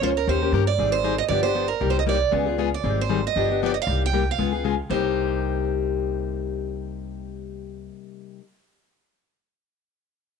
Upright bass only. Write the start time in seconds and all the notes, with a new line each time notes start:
0.02 C#2
0.27 D#2
0.52 G2
0.78 G#1
1.29 G1
1.81 C2
2.33 C#2
2.84 G#1
3.36 G1
3.87 C2
4.38 C#2
4.90 C2